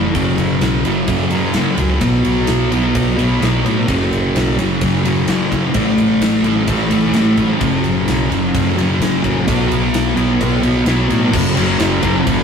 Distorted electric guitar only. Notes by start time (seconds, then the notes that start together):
Already playing: A2 E3 A3
0.14 F#2 C#3 F#3
0.84 C#3 F#3
1.30 C#3 F#3
1.55 F#2 C#3 F#3
1.77 C#3 F#3
2.01 B2 F#3 B3
2.72 F#3 B3
3.17 F#3 B3
3.40 B2 F#3 B3
3.64 F#3 B3
3.87 F#2 C#3 F#3
4.57 C#3 F#3
5.04 C#3 F#3
5.27 F#2 C#3 F#3
5.50 C#3 F#3
5.73 A2 E3 A3
6.44 E3 A3
6.91 E3 A3
7.14 A2 E3 A3
7.37 E3 A3
7.60 F#2 C#3 F#3
8.30 C#3 F#3
8.77 C#3 F#3
9.01 F#2 C#3 F#3
9.22 C#3 F#3
9.47 B2 F#3 B3
10.15 F#3 B3
10.62 F#3 B3
10.85 B2 F#3 B3
11.08 F#3 B3
11.31 F#2 C#3 F#3
11.55 C#3 F#3
11.79 F#2 C#3 F#3
12.02 C#3 F#3
12.25 F#2 C#3 F#3